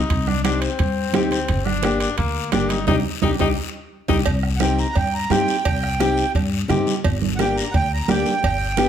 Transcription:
Already playing: D#4
0.10 C2, bombo low, high conga, high timbale, long guiro
0.27 D4, bombo rim, high conga
0.44 C4 D4 D#4 G4, bombo rim, high conga, high timbale, short guiro
0.61 C4, high timbale, short guiro
0.79 G2, bombo low, high conga, high timbale, long guiro
1.13 D2 C4 D#4 G4, bombo rim, high conga, high timbale, low timbale, short guiro
1.31 C4, high conga, high timbale, short guiro
1.48 G1, bombo low, high conga, high timbale, long guiro
1.65 D4, bombo rim, high conga
1.83 A#3 D4 G4, bombo rim, high conga, high timbale, short guiro
2.00 D4, high timbale, short guiro
2.17 D2 A#3, bombo low, high conga, high timbale, long guiro
2.52 G1 A#3 D4 G4, bombo rim, high conga, high timbale, low timbale, short guiro
2.69 D#4, high conga, high timbale, short guiro
2.87 C2 D4 D#4 G4, bombo low, high conga, high timbale, long guiro
3.22 C2 D4 D#4 G4, bombo low, high conga, high timbale
3.39 C2 D4 D#4 G4, bombo low, high conga, high timbale, long guiro
4.08 C2 D4 D#4 G4, bombo low, high conga, high timbale, long guiro
4.26 C2, bombo low, cowbell, high conga, long guiro
4.43 bombo rim
4.56 F#5, high conga
4.60 C4 D#4 G4 G5, bombo rim, short guiro
4.79 A#5, short guiro
4.92 G2 F#5, bombo low, cowbell, high conga, long guiro
4.97 G5
5.14 A#5
5.30 G2 C4 D#4 G4 G5, bombo rim, high conga, low timbale, short guiro
5.48 short guiro
5.65 C2, bombo low, cowbell, high conga, long guiro
5.83 bombo rim
6.00 C4 D#4 G4, bombo rim, high conga, short guiro
6.17 short guiro
6.35 G2, bombo low, cowbell, high conga, long guiro
6.68 G2 C4 D#4 G4, bombo rim, high conga, low conga, short guiro
6.87 high conga, short guiro
7.04 G1, bombo low, cowbell, high conga, long guiro
7.22 high conga
7.36 A#3 D4 F#5, bombo rim, high conga
7.40 G4 G5, short guiro
7.57 A#5, short guiro
7.71 D2 F#5, bombo low, cowbell, high conga, long guiro
7.75 G5
7.93 A#5
8.08 D2 A#3 D4 G4 G5, bombo rim, high conga, low timbale, short guiro
8.26 high conga, short guiro
8.43 G1, bombo low, cowbell, high conga, long guiro
8.77 B3 D4 G4, bombo rim, high conga, short guiro

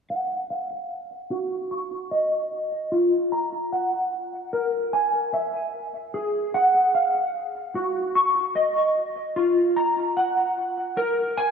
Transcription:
0.10 F#5
0.50 F5
1.31 F#4
1.71 C#6
2.11 D#5
2.92 F4
3.32 A#5
3.72 F#5
4.53 A#4
4.93 G#5
5.34 E5
6.14 G#4
6.54 F#5
6.95 F5
7.75 F#4
8.15 C#6
8.56 D#5
9.36 F4
9.76 A#5
10.17 F#5
10.97 A#4
11.37 G#5

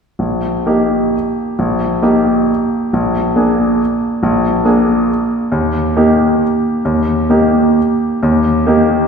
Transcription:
0.19 A#1
0.66 A#3 D#4 G4
1.59 A#1
2.02 A#3 D#4 G4
2.93 A#1
3.36 A#3 D4 G#4
4.23 A#1
4.65 A#3 D4 G#4
5.52 D#2
5.96 A#3 D#4 G4
6.85 D#2
7.30 A#3 D#4 G4
8.23 D#2
8.66 A#3 D#4 G4

